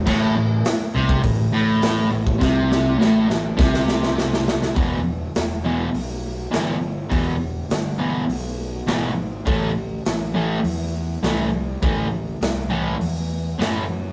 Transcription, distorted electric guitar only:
X:1
M:4/4
L:1/8
Q:1/4=102
K:Em
V:1 name="Distorted electric guitar" clef=bass
A,, A,, z C, A,, A,,2 A,, | C,2 A,, A,, C,4 | [E,,B,,E,] z2 [E,,B,,E,] z2 [E,,B,,E,] z | [E,,B,,E,] z2 [E,,B,,E,] z2 [E,,B,,E,] z |
[A,,E,A,] z2 [A,,E,A,] z2 [A,,E,A,] z | [A,,E,A,] z2 [A,,E,A,] z2 [A,,E,A,] z |]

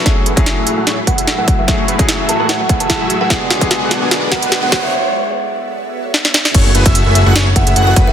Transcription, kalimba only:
X:1
M:4/4
L:1/16
Q:"Swing 16ths" 1/4=148
K:F#m
V:1 name="Kalimba"
z8 z2 f3 f z e- | e z4 z a b f f z a2 z2 f | z8 z2 f3 f f e | z16 |
z8 z2 f3 f z e |]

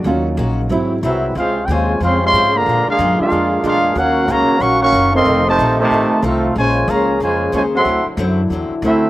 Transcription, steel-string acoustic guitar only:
X:1
M:4/4
L:1/8
Q:"Swing" 1/4=185
K:Db
V:1 name="Steel-string acoustic guitar"
[E,B,DG] z [E,B,DG] z [A,,G,C=E] z [A,,G,CE] z | [D,A,CF] z [D,A,CF] z [D,A,CF] z [D,A,CF] z | [B,,A,=DF] z [B,,A,DF] z [B,,A,DF] z [B,,A,DF] z | [E,G,DF] z [E,G,DF] z [E,G,DF] z [E,G,DF] z |
[F,CE=A] z [F,CEA] z [F,CEA] z [F,CEA] z | [B,DAc] z [B,DAc] z [B,DAc] z [B,DAc] z | [=D,^F,C=E] z [D,F,CE] z [D,F,CE] z [D,F,CE] z |]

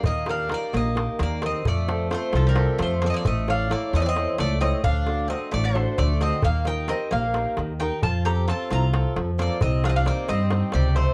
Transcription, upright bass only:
X:1
M:7/8
L:1/8
Q:1/4=132
K:Eblyd
V:1 name="Upright bass" clef=bass
E,,3 B,,,2 E,,2 | F,,3 C,,2 F,,2 | A,,,3 =E,,2 ^C,,2 | D,,3 A,,,2 D,,2 |
E,,3 B,,,2 E,,2 | F,,3 C,,2 F,,2 | C,,3 G,,2 ^C,,2 |]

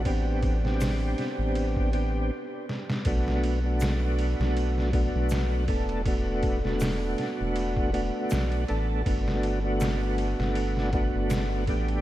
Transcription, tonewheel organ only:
X:1
M:4/4
L:1/16
Q:"Swing 16ths" 1/4=80
K:Em
V:1 name="Tonewheel organ"
[B,CDG]3 [B,CDG]6- [B,CDG] [B,CDG]2 z4 | [A,B,DF]3 [A,B,DF]6- [A,B,DF] [A,B,DF]4 [A,B,DA]2 | [A,B,DF]3 [A,B,DF]6- [A,B,DF] [A,B,DF]4 [A,B,DA]2 | [A,B,DF]3 [A,B,DF]6- [A,B,DF] [A,B,DF]4 [A,B,DG]2 |]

